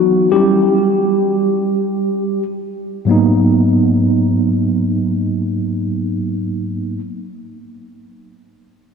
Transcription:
0.00 0.29 E3 medium
0.00 0.29 F#3 medium
0.00 0.29 B3 soft
0.00 0.29 D#4 medium
0.00 0.35 F#4 medium
0.32 2.44 G3 medium
0.32 0.77 C#4 soft
0.32 0.77 E4 medium
0.32 2.43 G4 medium
3.05 6.98 G#2 medium
3.05 6.98 F#3 medium
3.05 6.99 A#3 medium
3.09 7.00 B3 medium
3.09 7.00 D#4 medium

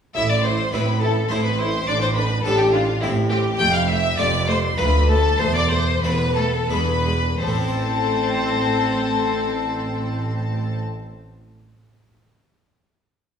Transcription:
0.15 0.66 A1 medium
0.15 0.66 A2 medium
0.15 0.63 A2 medium
0.15 0.23 E4 medium
0.15 0.32 E5 loud
0.15 0.29 E5 medium
0.15 0.28 E6 loud
0.28 0.46 D5 medium
0.28 0.44 D5 medium
0.28 0.43 D6 medium
0.43 0.52 E4 medium
0.43 0.72 C5 medium
0.43 0.73 C5 medium
0.43 0.72 C6 medium
0.73 1.24 A1 medium
0.73 1.20 A2 medium
0.73 1.23 A2 medium
0.73 1.14 A3 soft
0.73 1.14 C4 soft
0.73 0.81 E4 medium
0.73 1.15 E4 medium
0.73 1.01 B4 medium
0.73 0.81 B4 medium
0.73 1.02 B5 loud
1.00 1.10 E4 medium
1.00 1.29 A4 medium
1.00 1.30 A4 medium
1.00 1.08 A5 medium
1.28 1.81 A1 medium
1.28 1.81 A2 medium
1.28 1.78 A2 medium
1.28 1.71 A3 medium
1.28 1.72 C4 medium
1.28 1.39 E4 medium
1.28 1.72 E4 medium
1.28 1.44 C5 medium
1.28 1.36 C5 loud
1.28 1.35 C6 loud
1.44 1.59 B4 medium
1.44 1.60 B4 medium
1.44 1.58 B5 medium
1.58 1.67 E4 medium
1.58 1.87 C5 medium
1.58 1.89 C5 medium
1.58 1.86 C6 loud
1.87 2.38 A1 medium
1.87 2.38 A2 medium
1.87 2.35 A2 medium
1.87 1.96 D4 medium
1.87 1.93 D5 loud
1.87 2.01 D5 loud
1.87 2.01 D6 loud
2.01 2.15 C5 medium
2.01 2.07 C5 medium
2.01 2.16 C6 loud
2.15 2.24 D4 medium
2.15 2.44 B4 medium
2.15 2.44 B5 medium
2.44 2.95 A1 medium
2.44 2.95 A2 medium
2.44 2.92 A2 medium
2.44 2.53 D4 medium
2.44 2.86 D4 soft
2.44 2.86 G4 medium
2.44 2.60 A4 loud
2.44 2.59 A4 medium
2.44 2.58 A5 loud
2.59 2.72 G4 medium
2.59 2.73 G4 medium
2.59 2.73 G5 medium
2.72 2.82 D4 medium
2.72 2.80 F4 medium
2.72 3.02 F4 medium
2.72 3.01 F5 medium
3.01 3.53 A1 medium
3.01 3.52 A2 medium
3.01 3.50 A2 medium
3.01 3.10 C4 medium
3.01 3.56 C4 medium
3.01 3.09 E4 medium
3.01 3.10 E4 medium
3.01 3.56 G4 medium
3.01 3.09 E5 loud
3.29 3.39 C4 medium
3.29 3.38 G4 medium
3.29 3.59 G4 medium
3.29 3.38 G5 loud
3.59 4.11 F1 loud
3.59 4.08 F2 medium
3.59 4.11 F2 medium
3.59 3.67 A3 medium
3.59 3.73 G5 loud
3.59 3.74 G5 loud
3.59 3.73 G6 loud
3.74 3.89 F5 medium
3.74 3.89 F6 loud
3.88 3.97 A3 medium
3.88 4.17 E5 loud
3.88 4.18 E5 loud
3.88 4.17 E6 loud
4.17 4.71 F1 medium
4.17 4.70 F2 medium
4.17 4.68 F2 medium
4.17 4.61 A3 medium
4.17 4.26 A3 medium
4.17 4.61 C4 medium
4.17 4.62 F4 medium
4.17 4.47 D5 loud
4.17 4.26 D5 loud
4.17 4.48 D6 loud
4.48 4.56 A3 medium
4.48 4.56 C5 medium
4.48 4.56 C5 loud
4.48 4.78 C6 loud
4.77 5.32 D2 medium
4.77 5.29 D2 medium
4.77 5.32 D2 medium
4.77 5.35 A3 medium
4.77 4.86 A3 medium
4.77 5.36 D4 medium
4.77 5.36 F4 medium
4.77 5.08 B4 medium
4.77 4.86 B4 loud
4.77 5.08 B5 loud
5.08 5.17 A3 medium
5.08 5.41 A4 loud
5.08 5.39 A4 medium
5.08 5.39 A5 loud
5.39 5.96 E1 medium
5.39 5.95 E2 medium
5.39 5.93 E2 medium
5.39 5.48 A3 medium
5.39 5.55 C5 loud
5.39 5.55 C6 loud
5.55 5.71 D5 medium
5.55 5.71 D5 loud
5.55 5.71 D6 loud
5.70 5.79 A3 medium
5.70 6.03 C5 medium
5.70 6.02 C6 loud
6.02 6.62 E1 medium
6.02 6.62 E2 medium
6.02 6.60 E2 medium
6.02 6.11 A3 medium
6.02 6.52 A3 medium
6.02 6.52 C4 medium
6.02 6.52 E4 medium
6.02 6.36 B4 loud
6.02 6.10 B5 loud
6.35 6.44 A3 medium
6.35 6.70 A4 medium
6.35 6.43 A5 loud
6.69 7.32 E1 medium
6.69 7.32 E2 medium
6.69 7.29 E2 medium
6.69 7.36 G#3 medium
6.69 6.78 G#3 medium
6.69 7.37 D4 medium
6.69 7.37 E4 medium
6.69 7.41 B4 medium
6.69 7.39 B4 medium
6.69 7.39 B5 loud
7.05 7.13 G#3 medium
7.39 10.78 A1 medium
7.39 10.77 A2 medium
7.39 10.78 A2 medium
7.39 10.78 C4 medium
7.39 10.78 A4 medium
7.39 10.78 C5 medium
7.39 10.77 A5 loud
7.48 10.85 A3 medium
7.55 10.92 C4 medium
7.62 10.99 E4 medium
7.68 11.06 C5 medium

